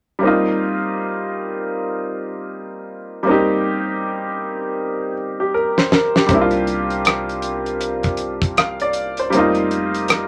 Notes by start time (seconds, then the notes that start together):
0.19 G3 A#3
0.23 C4 D#4
0.27 F4
3.23 G3 A#3
3.27 C4 D#4 G4
5.40 G4
5.54 A#4
5.78 C5, snare
5.92 A#4, snare
6.16 G4, snare
6.26 C2 G3 A#3, kick, closed hi-hat
6.31 C4 D4 E4
6.41 F4
6.51 closed hi-hat
6.67 closed hi-hat
6.90 closed hi-hat
7.05 cross-stick, closed hi-hat
7.29 closed hi-hat
7.42 closed hi-hat
7.66 closed hi-hat
7.81 closed hi-hat
8.03 kick, closed hi-hat
8.17 closed hi-hat
8.42 kick, closed hi-hat
8.57 F5, cross-stick, closed hi-hat
8.80 D5, closed hi-hat
8.93 closed hi-hat
9.17 C5, closed hi-hat
9.30 G3 A#3, closed hi-hat
9.34 F1 C4 D#4
9.39 F4
9.55 closed hi-hat
9.71 closed hi-hat
9.94 closed hi-hat
10.08 cross-stick, closed hi-hat